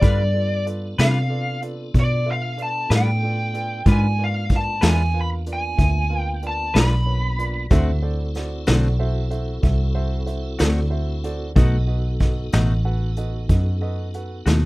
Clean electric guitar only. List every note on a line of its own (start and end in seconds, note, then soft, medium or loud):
0.01 0.21 G3 medium
0.01 0.22 D4 medium
0.01 0.22 F4 medium
0.01 0.22 B4 medium
0.98 1.19 G3 soft
0.98 1.18 D4 medium
0.98 1.18 F4 medium
0.98 1.18 B4 medium
2.90 3.10 G3 medium
2.90 3.10 D4 medium
2.90 3.10 F4 medium
2.90 3.09 B4 medium
3.87 4.06 G#3 medium
3.87 4.06 D4 medium
3.87 4.06 F4 medium
3.87 4.07 B4 medium
4.81 5.02 G#3 soft
4.81 5.02 D4 medium
4.81 5.01 F4 medium
4.81 5.01 B4 medium
6.74 6.94 G#3 soft
6.74 6.94 D4 medium
6.74 6.94 F4 soft
6.74 6.94 B4 medium
7.71 7.90 D3 medium
7.71 7.90 A3 medium
7.71 7.91 C4 medium
7.71 7.91 F#4 medium
8.67 8.88 D3 medium
8.67 8.87 A3 medium
8.67 8.87 C4 medium
8.67 8.86 F#4 medium
10.59 10.80 D3 medium
10.59 10.79 A3 medium
10.59 10.79 C4 medium
10.59 10.79 F#4 medium
11.56 11.75 B2 medium
11.56 11.76 A3 medium
11.56 11.76 D#4 medium
11.56 11.76 F#4 medium
12.53 12.73 B2 medium
12.53 12.73 A3 medium
12.53 12.73 D#4 medium
12.53 12.73 F#4 medium
14.46 14.65 B2 medium
14.46 14.65 A3 medium
14.46 14.65 D#4 medium
14.46 14.65 F#4 medium